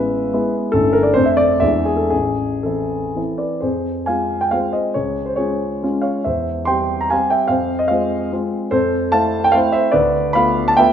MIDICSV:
0, 0, Header, 1, 2, 480
1, 0, Start_track
1, 0, Key_signature, 0, "minor"
1, 0, Tempo, 421941
1, 844, Time_signature, 3, 2, 24, 8
1, 1327, Tempo, 465116
1, 1807, Tempo, 512821
1, 3247, Tempo, 458015
1, 3753, Key_signature, -4, "minor"
1, 4687, Tempo, 428266
1, 7567, Tempo, 407056
1, 12064, End_track
2, 0, Start_track
2, 0, Title_t, "Grand piano"
2, 0, Program_c, 0, 0
2, 0, Control_c, 0, 64, 127
2, 0, Note_on_c, 0, 33, 48
2, 0, Note_on_c, 0, 56, 37
2, 0, Note_on_c, 0, 59, 37
2, 0, Note_on_c, 0, 64, 39
2, 0, Note_on_c, 0, 71, 67
2, 0, Note_on_c, 0, 76, 72
2, 333, Note_off_c, 0, 56, 0
2, 333, Note_off_c, 0, 59, 0
2, 337, Note_off_c, 0, 64, 0
2, 380, Note_on_c, 0, 56, 45
2, 382, Note_on_c, 0, 59, 48
2, 388, Note_on_c, 0, 64, 49
2, 394, Control_c, 0, 64, 0
2, 402, Note_off_c, 0, 33, 0
2, 404, Note_off_c, 0, 76, 0
2, 599, Note_off_c, 0, 71, 0
2, 796, Note_off_c, 0, 56, 0
2, 797, Note_off_c, 0, 59, 0
2, 801, Note_off_c, 0, 64, 0
2, 818, Note_on_c, 0, 69, 88
2, 836, Note_on_c, 0, 31, 52
2, 839, Note_on_c, 0, 61, 38
2, 845, Note_on_c, 0, 57, 36
2, 851, Note_on_c, 0, 64, 36
2, 1055, Control_c, 0, 64, 127
2, 1056, Note_on_c, 0, 70, 77
2, 1063, Note_off_c, 0, 69, 0
2, 1173, Note_on_c, 0, 74, 67
2, 1189, Note_off_c, 0, 70, 0
2, 1280, Note_off_c, 0, 61, 0
2, 1283, Note_off_c, 0, 57, 0
2, 1286, Note_off_c, 0, 64, 0
2, 1293, Note_on_c, 0, 72, 89
2, 1309, Note_off_c, 0, 31, 0
2, 1311, Note_on_c, 0, 41, 56
2, 1311, Note_on_c, 0, 57, 38
2, 1315, Note_off_c, 0, 74, 0
2, 1323, Note_on_c, 0, 62, 41
2, 1326, Note_on_c, 0, 69, 40
2, 1341, Control_c, 0, 64, 0
2, 1421, Note_on_c, 0, 76, 65
2, 1432, Note_off_c, 0, 72, 0
2, 1502, Control_c, 0, 64, 127
2, 1536, Note_on_c, 0, 74, 91
2, 1554, Note_off_c, 0, 76, 0
2, 1759, Note_off_c, 0, 57, 0
2, 1764, Note_off_c, 0, 62, 0
2, 1765, Note_off_c, 0, 69, 0
2, 1774, Note_on_c, 0, 76, 86
2, 1785, Note_off_c, 0, 41, 0
2, 1792, Note_off_c, 0, 74, 0
2, 1792, Note_on_c, 0, 56, 41
2, 1794, Note_on_c, 0, 40, 50
2, 1799, Note_on_c, 0, 62, 36
2, 1811, Note_on_c, 0, 64, 37
2, 1820, Control_c, 0, 64, 0
2, 2000, Control_c, 0, 64, 127
2, 2015, Note_on_c, 0, 68, 65
2, 2017, Note_off_c, 0, 76, 0
2, 2119, Note_on_c, 0, 69, 54
2, 2139, Note_off_c, 0, 68, 0
2, 2223, Note_off_c, 0, 56, 0
2, 2226, Note_off_c, 0, 62, 0
2, 2231, Note_off_c, 0, 64, 0
2, 2247, Note_off_c, 0, 40, 0
2, 2249, Note_on_c, 0, 68, 66
2, 2252, Note_off_c, 0, 69, 0
2, 2262, Note_on_c, 0, 33, 45
2, 2282, Control_c, 0, 64, 0
2, 2453, Control_c, 0, 64, 127
2, 2742, Note_on_c, 0, 69, 46
2, 2745, Note_off_c, 0, 33, 0
2, 2753, Note_off_c, 0, 68, 0
2, 2757, Note_on_c, 0, 52, 30
2, 2766, Note_on_c, 0, 64, 36
2, 2769, Note_on_c, 0, 60, 32
2, 3208, Note_off_c, 0, 52, 0
2, 3212, Note_off_c, 0, 64, 0
2, 3214, Note_off_c, 0, 60, 0
2, 3229, Note_on_c, 0, 52, 31
2, 3239, Note_on_c, 0, 60, 33
2, 3245, Note_on_c, 0, 64, 35
2, 3265, Control_c, 0, 64, 0
2, 3466, Note_on_c, 0, 74, 47
2, 3476, Note_on_c, 0, 71, 38
2, 3501, Note_off_c, 0, 69, 0
2, 3701, Note_off_c, 0, 52, 0
2, 3703, Note_on_c, 0, 72, 51
2, 3706, Note_off_c, 0, 60, 0
2, 3710, Note_off_c, 0, 64, 0
2, 3717, Note_off_c, 0, 71, 0
2, 3717, Note_on_c, 0, 68, 39
2, 3726, Note_on_c, 0, 41, 41
2, 3730, Note_off_c, 0, 74, 0
2, 3943, Control_c, 0, 64, 127
2, 4168, Note_off_c, 0, 68, 0
2, 4181, Note_on_c, 0, 80, 66
2, 4192, Note_off_c, 0, 41, 0
2, 4193, Note_on_c, 0, 77, 55
2, 4194, Note_off_c, 0, 72, 0
2, 4202, Note_on_c, 0, 56, 34
2, 4213, Note_on_c, 0, 60, 31
2, 4215, Note_on_c, 0, 65, 35
2, 4534, Note_off_c, 0, 77, 0
2, 4546, Note_on_c, 0, 79, 66
2, 4554, Note_off_c, 0, 80, 0
2, 4637, Note_off_c, 0, 56, 0
2, 4642, Note_off_c, 0, 60, 0
2, 4643, Note_off_c, 0, 65, 0
2, 4653, Note_on_c, 0, 77, 66
2, 4669, Note_on_c, 0, 56, 36
2, 4674, Note_off_c, 0, 79, 0
2, 4674, Note_on_c, 0, 72, 48
2, 4680, Note_on_c, 0, 60, 34
2, 4685, Note_on_c, 0, 65, 38
2, 4701, Control_c, 0, 64, 0
2, 4879, Note_off_c, 0, 72, 0
2, 4893, Note_on_c, 0, 75, 57
2, 4896, Note_on_c, 0, 72, 43
2, 4910, Note_off_c, 0, 77, 0
2, 5107, Note_off_c, 0, 56, 0
2, 5113, Note_off_c, 0, 60, 0
2, 5116, Note_off_c, 0, 65, 0
2, 5128, Note_off_c, 0, 72, 0
2, 5133, Note_on_c, 0, 73, 58
2, 5144, Note_on_c, 0, 68, 45
2, 5145, Note_off_c, 0, 75, 0
2, 5151, Note_on_c, 0, 37, 42
2, 5353, Control_c, 0, 64, 127
2, 5483, Note_off_c, 0, 68, 0
2, 5487, Note_on_c, 0, 72, 57
2, 5503, Note_off_c, 0, 73, 0
2, 5601, Note_on_c, 0, 73, 60
2, 5614, Note_on_c, 0, 68, 45
2, 5623, Note_on_c, 0, 56, 34
2, 5624, Note_off_c, 0, 37, 0
2, 5627, Note_on_c, 0, 65, 35
2, 5628, Note_off_c, 0, 72, 0
2, 5633, Note_on_c, 0, 61, 33
2, 6082, Note_off_c, 0, 56, 0
2, 6084, Note_off_c, 0, 65, 0
2, 6087, Note_off_c, 0, 61, 0
2, 6087, Note_off_c, 0, 68, 0
2, 6116, Note_off_c, 0, 73, 0
2, 6126, Note_on_c, 0, 56, 40
2, 6130, Note_on_c, 0, 61, 39
2, 6133, Note_on_c, 0, 65, 42
2, 6152, Control_c, 0, 64, 0
2, 6335, Note_on_c, 0, 77, 59
2, 6348, Note_on_c, 0, 73, 45
2, 6560, Note_off_c, 0, 56, 0
2, 6562, Note_off_c, 0, 61, 0
2, 6563, Note_off_c, 0, 65, 0
2, 6578, Note_off_c, 0, 73, 0
2, 6589, Note_off_c, 0, 77, 0
2, 6593, Note_on_c, 0, 76, 59
2, 6603, Note_on_c, 0, 72, 51
2, 6614, Note_on_c, 0, 40, 41
2, 6822, Control_c, 0, 64, 127
2, 7047, Note_off_c, 0, 72, 0
2, 7051, Note_on_c, 0, 84, 77
2, 7071, Note_off_c, 0, 40, 0
2, 7072, Note_on_c, 0, 55, 32
2, 7073, Note_on_c, 0, 79, 58
2, 7075, Note_off_c, 0, 76, 0
2, 7077, Note_on_c, 0, 60, 34
2, 7083, Note_on_c, 0, 67, 36
2, 7420, Note_off_c, 0, 79, 0
2, 7435, Note_off_c, 0, 84, 0
2, 7448, Note_on_c, 0, 82, 71
2, 7518, Note_off_c, 0, 55, 0
2, 7520, Note_off_c, 0, 60, 0
2, 7523, Note_off_c, 0, 67, 0
2, 7553, Note_on_c, 0, 80, 75
2, 7562, Note_on_c, 0, 77, 62
2, 7566, Note_off_c, 0, 82, 0
2, 7573, Note_on_c, 0, 55, 38
2, 7578, Note_on_c, 0, 67, 45
2, 7581, Control_c, 0, 64, 0
2, 7589, Note_on_c, 0, 60, 40
2, 7786, Note_off_c, 0, 77, 0
2, 7791, Note_on_c, 0, 79, 73
2, 7798, Note_off_c, 0, 80, 0
2, 7801, Note_on_c, 0, 76, 53
2, 7991, Note_off_c, 0, 55, 0
2, 7994, Note_off_c, 0, 67, 0
2, 7994, Note_on_c, 0, 77, 70
2, 8000, Note_off_c, 0, 60, 0
2, 8008, Note_on_c, 0, 72, 54
2, 8010, Note_on_c, 0, 41, 47
2, 8016, Note_off_c, 0, 76, 0
2, 8027, Note_off_c, 0, 79, 0
2, 8260, Control_c, 0, 64, 127
2, 8346, Note_off_c, 0, 72, 0
2, 8363, Note_on_c, 0, 75, 71
2, 8365, Note_off_c, 0, 77, 0
2, 8468, Note_on_c, 0, 77, 75
2, 8482, Note_off_c, 0, 41, 0
2, 8495, Note_on_c, 0, 72, 50
2, 8498, Note_off_c, 0, 75, 0
2, 8505, Note_on_c, 0, 56, 41
2, 8507, Note_on_c, 0, 65, 42
2, 8510, Note_on_c, 0, 60, 39
2, 8948, Note_off_c, 0, 56, 0
2, 8949, Note_off_c, 0, 65, 0
2, 8951, Note_off_c, 0, 60, 0
2, 8956, Note_off_c, 0, 72, 0
2, 8977, Note_off_c, 0, 77, 0
2, 8995, Note_on_c, 0, 56, 45
2, 9000, Note_on_c, 0, 60, 45
2, 9002, Note_on_c, 0, 65, 50
2, 9009, Control_c, 0, 64, 0
2, 9421, Note_off_c, 0, 56, 0
2, 9424, Note_off_c, 0, 60, 0
2, 9424, Note_off_c, 0, 65, 0
2, 9449, Note_on_c, 0, 72, 85
2, 9455, Note_on_c, 0, 69, 62
2, 9459, Note_on_c, 0, 41, 53
2, 9675, Control_c, 0, 64, 127
2, 9911, Note_off_c, 0, 69, 0
2, 9931, Note_on_c, 0, 81, 93
2, 9932, Note_off_c, 0, 41, 0
2, 9937, Note_on_c, 0, 77, 67
2, 9941, Note_off_c, 0, 72, 0
2, 9947, Note_on_c, 0, 57, 44
2, 9954, Note_on_c, 0, 60, 45
2, 9954, Note_on_c, 0, 64, 47
2, 10291, Note_off_c, 0, 77, 0
2, 10314, Note_on_c, 0, 79, 90
2, 10315, Note_off_c, 0, 81, 0
2, 10396, Note_off_c, 0, 57, 0
2, 10400, Note_off_c, 0, 60, 0
2, 10400, Note_off_c, 0, 64, 0
2, 10402, Note_on_c, 0, 77, 86
2, 10420, Note_on_c, 0, 72, 68
2, 10432, Note_on_c, 0, 57, 53
2, 10433, Note_on_c, 0, 64, 60
2, 10437, Note_on_c, 0, 60, 52
2, 10440, Note_off_c, 0, 79, 0
2, 10457, Control_c, 0, 64, 0
2, 10636, Note_off_c, 0, 72, 0
2, 10645, Note_on_c, 0, 76, 90
2, 10654, Note_on_c, 0, 72, 63
2, 10657, Note_off_c, 0, 77, 0
2, 10853, Note_off_c, 0, 57, 0
2, 10854, Note_off_c, 0, 64, 0
2, 10856, Note_off_c, 0, 60, 0
2, 10870, Note_on_c, 0, 74, 83
2, 10878, Note_off_c, 0, 72, 0
2, 10881, Note_on_c, 0, 71, 71
2, 10890, Note_off_c, 0, 76, 0
2, 10895, Note_on_c, 0, 38, 61
2, 11117, Control_c, 0, 64, 127
2, 11340, Note_off_c, 0, 71, 0
2, 11362, Note_on_c, 0, 83, 99
2, 11367, Note_off_c, 0, 38, 0
2, 11370, Note_off_c, 0, 74, 0
2, 11387, Note_on_c, 0, 77, 78
2, 11390, Note_on_c, 0, 57, 46
2, 11391, Note_on_c, 0, 59, 45
2, 11400, Note_on_c, 0, 65, 51
2, 11739, Note_off_c, 0, 77, 0
2, 11754, Note_off_c, 0, 83, 0
2, 11770, Note_on_c, 0, 81, 93
2, 11843, Note_off_c, 0, 57, 0
2, 11844, Note_off_c, 0, 59, 0
2, 11848, Note_off_c, 0, 65, 0
2, 11874, Note_on_c, 0, 79, 100
2, 11891, Note_off_c, 0, 81, 0
2, 11892, Note_on_c, 0, 57, 48
2, 11893, Note_on_c, 0, 76, 76
2, 11902, Control_c, 0, 64, 0
2, 11902, Note_on_c, 0, 65, 54
2, 11903, Note_on_c, 0, 59, 57
2, 12064, Note_off_c, 0, 57, 0
2, 12064, Note_off_c, 0, 59, 0
2, 12064, Note_off_c, 0, 65, 0
2, 12064, Note_off_c, 0, 76, 0
2, 12064, Note_off_c, 0, 79, 0
2, 12064, End_track
0, 0, End_of_file